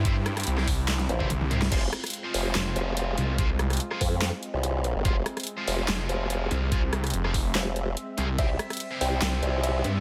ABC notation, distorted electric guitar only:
X:1
M:4/4
L:1/16
Q:1/4=144
K:Fm
V:1 name="Distorted electric guitar"
[=EGc] z4 [EGc] z4 z [EGc] z2 [EGc] z | [FAc] z4 [FAc]8- [FAc]3 | [FAc] z4 [FAc] z8 z2 | [FAc] z4 [FAc]8- [FAc]3 |
[FAc] z4 [FAc] z8 [FAc] z | [=EGc] z4 [EGc]8- [EGc]3 |]